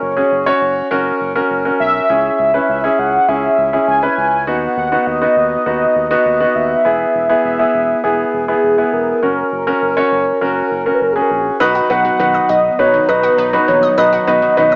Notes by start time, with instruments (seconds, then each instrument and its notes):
Already playing: grand piano C#4 F#4 A#4, soft synth lead C#5
0.02 analog synth bass F#1
0.17 grand piano C#4 F#4 G#4
0.31 analog synth bass F#1
0.46 grand piano C#4 F#4 C#5
0.61 analog synth bass F#1
0.91 analog synth bass F#1, grand piano C#4 F#4 A#4
1.21 analog synth bass F#1
1.35 grand piano C#4 F#4 A#4
1.50 analog synth bass F#1
1.65 grand piano C#4 F#4 A#4
1.80 analog synth bass B1, soft synth lead E5
2.10 analog synth bass C#2, grand piano C#4 E4 G#4
2.39 analog synth bass C#2
2.54 grand piano C#4 E4 B4
2.69 analog synth bass C#2, soft synth lead E5
2.84 grand piano C#4 E4 G#4
2.99 analog synth bass C#2, soft synth lead F#5
3.28 analog synth bass C#2, grand piano C#4 E4 G#4, soft synth lead E5
3.58 analog synth bass C#2
3.73 grand piano C#4 E4 G#4
3.88 analog synth bass C#2, soft synth lead G#5
4.03 grand piano C#4 E4 B4
4.18 analog synth bass C#2
4.47 analog synth bass D#2, grand piano B3 D#4 F#4, soft synth lead F#5
4.77 analog synth bass D#2, soft synth lead F#5
4.92 grand piano B3 D#4 F#4
5.07 analog synth bass D#2, soft synth lead D#5
5.22 grand piano B3 D#4 F#4
5.36 analog synth bass D#2
5.66 analog synth bass D#2, grand piano B3 D#4 F#4
5.96 analog synth bass D#2
6.11 grand piano B3 D#4 F#4
6.25 analog synth bass D#2
6.40 grand piano B3 D#4 F#4
6.55 analog synth bass D#2, soft synth lead E5
6.85 analog synth bass E1, grand piano B3 E4 G#4
7.15 analog synth bass E1
7.29 grand piano B3 E4 G#4
7.44 analog synth bass E1, soft synth lead E5
7.59 grand piano B3 E4 G#4
7.74 analog synth bass E1
8.04 analog synth bass E1, grand piano B3 E4 G#4, soft synth lead G#4
8.33 analog synth bass E1
8.48 grand piano B3 E4 G#4
8.63 analog synth bass E1
8.78 grand piano B3 E4 G#4
8.93 analog synth bass E1, soft synth lead A#4
9.22 analog synth bass F#1, grand piano C#4 F#4 A#4
9.52 analog synth bass F#1
9.67 grand piano C#4 F#4 A#4
9.82 analog synth bass F#1
9.97 grand piano C#4 F#4 C#5
10.12 analog synth bass F#1
10.41 analog synth bass F#1, grand piano C#4 F#4 A#4
10.71 analog synth bass F#1
10.86 grand piano C#4 F#4 A#4
10.94 soft synth lead B4
11.01 analog synth bass F#1, soft synth lead A#4
11.12 grand piano C#4 F#4 G#4, soft synth lead G#4
11.21 soft synth lead A#4
11.30 analog synth bass A#1
11.60 analog synth bass B1, analog synth pad F#3 B3 D#4, grand piano D#4 F#4 B4, synth pluck D#5
11.75 synth pluck F#4
11.90 analog synth bass B1, synth pluck B3, grand piano D#4 F#4 B4, soft synth lead F#5
12.05 synth pluck F#3
12.20 analog synth bass B1, synth pluck D#3, grand piano D#4 F#4 B4
12.34 synth pluck D#5
12.49 analog synth bass B1, synth pluck F#4, soft synth lead D#5
12.79 analog synth bass B1, grand piano D#4 F#4 B4, soft synth lead C#5
12.94 synth pluck D#3
13.09 analog synth bass B1, grand piano D#4 F#4 B4, soft synth lead B4, synth pluck D#5
13.24 synth pluck F#4
13.38 analog synth bass B1, synth pluck B3
13.53 synth pluck F#3, grand piano D#4 F#4 B4
13.68 analog synth bass A#1, synth pluck D#3, soft synth lead C#5
13.83 synth pluck D#5
13.98 analog synth bass B1, grand piano D#4 F#4 B4, synth pluck D#5, soft synth lead D#5
14.13 synth pluck F#4
14.27 analog synth bass B1, synth pluck B3, grand piano D#4 F#4 B4
14.42 synth pluck F#3
14.57 analog synth bass B1, synth pluck D#3, grand piano D#4 F#4 B4, soft synth lead D#5
14.72 synth pluck D#5